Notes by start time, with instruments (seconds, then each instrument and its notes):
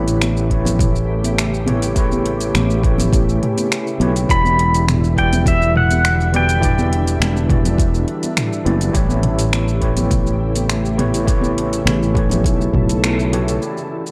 Already playing: fretless electric bass A1, ambient pad C#3 A3 E4 G4, tine electric piano A3 E4 G4 B4 C#5
0.08 closed hi-hat, shaker
0.21 finger snap, closed hi-hat, high conga, shaker
0.37 shaker
0.49 tine electric piano A3 E4 G4 B4, kick, closed hi-hat
0.54 tine electric piano C#5
0.65 closed hi-hat, high conga, low conga, shaker
0.79 kick, closed hi-hat, mid tom, shaker
0.96 shaker
1.24 closed hi-hat, high conga, shaker
1.38 finger snap, closed hi-hat, shaker
1.54 shaker
1.66 tine electric piano A3 E4 G4 B4 C#5, closed hi-hat, mid tom, high conga
1.82 closed hi-hat, shaker
1.94 tine electric piano A3 E4 G4 B4, kick, closed hi-hat, shaker
1.99 tine electric piano C#5
2.12 high conga, shaker
2.26 closed hi-hat
2.41 closed hi-hat, shaker
2.55 fretless electric bass A1, finger snap, closed hi-hat, mid tom, high conga, shaker
2.70 shaker
2.81 tine electric piano A3 E4 G4 B4, kick, closed hi-hat
2.86 tine electric piano C#5
2.98 closed hi-hat, high conga, low conga, shaker
3.13 kick, closed hi-hat, shaker
3.29 shaker
3.43 closed hi-hat, mid tom
3.57 closed hi-hat, high conga, shaker
3.72 finger snap, closed hi-hat, shaker
3.87 shaker
3.99 fretless electric bass B1, tine electric piano A3 E4 G4 B4 C#5, closed hi-hat, high conga
4.16 closed hi-hat, shaker
4.28 fretless electric bass E1, ambient pad D3 G3 E5, tine electric piano E3 E4 F#4 G4, pedal steel guitar B5, kick, closed hi-hat, shaker
4.32 tine electric piano D5
4.45 high conga, shaker
4.59 closed hi-hat
4.74 closed hi-hat, shaker
4.88 finger snap, closed hi-hat, mid tom, high conga, shaker
5.04 shaker
5.14 tine electric piano E3 E4 F#4, kick, closed hi-hat
5.18 tine electric piano G4 D5, pedal steel guitar G5
5.33 closed hi-hat, high conga, low conga, shaker
5.46 pedal steel guitar E5, kick, closed hi-hat, shaker
5.62 shaker
5.76 pedal steel guitar F#5, mid tom
5.91 closed hi-hat, high conga, shaker
6.05 finger snap, closed hi-hat, shaker
6.21 shaker
6.32 tine electric piano E3 E4 F#4 G4 D5, closed hi-hat, high conga
6.36 pedal steel guitar G5
6.49 closed hi-hat, shaker
6.60 tine electric piano E3 D4 E4 G4, ambient pad D4, kick, closed hi-hat, mid tom, shaker
6.65 tine electric piano D5
6.79 high conga, shaker
6.93 closed hi-hat
7.07 closed hi-hat, shaker
7.20 fretless electric bass E1, finger snap, closed hi-hat, high conga, shaker
7.37 shaker
7.46 tine electric piano E3 E4 F#4, kick
7.50 tine electric piano G4 D5, closed hi-hat, mid tom
7.65 closed hi-hat, high conga, low conga, shaker
7.78 kick, closed hi-hat, shaker
7.94 shaker
8.08 closed hi-hat
8.23 closed hi-hat, high conga, shaker
8.37 finger snap, closed hi-hat, mid tom, shaker
8.53 shaker
8.65 fretless electric bass F#1, tine electric piano E3 E4 F#4 G4 D5, closed hi-hat, high conga
8.81 closed hi-hat, shaker
8.92 fretless electric bass A1, tine electric piano A3 E4 G4 B4, kick, closed hi-hat, shaker
8.96 ambient pad C#3 A3 E4 G4, tine electric piano C#5
9.10 high conga, shaker
9.23 closed hi-hat, mid tom
9.39 closed hi-hat, shaker
9.53 finger snap, closed hi-hat, high conga, shaker
9.68 shaker
9.80 tine electric piano A3 E4 G4 B4, kick, closed hi-hat
9.85 tine electric piano C#5
9.97 closed hi-hat, high conga, low conga, shaker
10.11 kick, closed hi-hat, mid tom, shaker
10.27 shaker
10.56 closed hi-hat, high conga, shaker
10.70 finger snap, closed hi-hat, shaker
10.85 shaker
10.97 tine electric piano A3 E4 G4 B4 C#5, closed hi-hat, mid tom, high conga
11.14 closed hi-hat, shaker
11.25 tine electric piano A3 E4 G4, kick, closed hi-hat, shaker
11.29 ambient pad A4, tine electric piano B4 C#5
11.41 high conga, shaker
11.58 closed hi-hat
11.73 closed hi-hat, shaker
11.85 fretless electric bass A1, finger snap, closed hi-hat, mid tom, high conga, shaker
12.03 shaker
12.14 tine electric piano A3 E4 G4 B4, kick, closed hi-hat
12.19 tine electric piano C#5
12.30 closed hi-hat, high conga, low conga, shaker
12.44 fretless electric bass B1, kick, closed hi-hat, shaker
12.61 shaker
12.73 fretless electric bass B1, kick, mid tom
12.89 closed hi-hat, high conga, shaker
13.04 finger snap, closed hi-hat, shaker
13.19 shaker
13.32 tine electric piano A3 E4 G4 B4 C#5, closed hi-hat, high conga
13.48 closed hi-hat, shaker
13.60 ambient pad D3 G3 E4 F#5, tine electric piano E3 E4 F#4 G4, shaker
13.65 tine electric piano D5
13.77 shaker
14.07 shaker